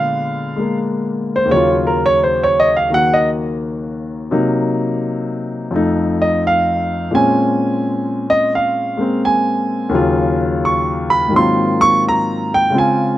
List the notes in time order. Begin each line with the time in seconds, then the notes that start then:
Already playing: A#2 D3 G#3 B3 F5
0.56 G#3 A#3
1.36 C5
1.45 D#2 C#3
1.51 F#3 C#5
1.56 F4
1.70 F4
1.87 A#4
2.06 C#5
2.23 C5
2.43 C#5
2.60 D#5
2.77 F5
2.90 D#3 A#3 F#4
2.94 F#5
3.14 D#5
4.31 C3 F#3 A#3 D#4
5.71 F2 F3 A3
5.76 D#4
6.22 D#5
6.47 F5
7.11 A#2 G#3 C4 C#4 G#5
8.30 D#5
8.55 F5
8.97 G#3 A#3 C4
9.25 G#5
9.89 D#2 C#3
9.93 F#3 F4
10.65 C#6
11.10 B5
11.28 G#2 D#3 F#3
11.34 A#3 C4 F4 C6
11.81 C#6
12.08 A#5
12.54 G5
12.70 C#3 G#3 C4
12.76 F4 G#5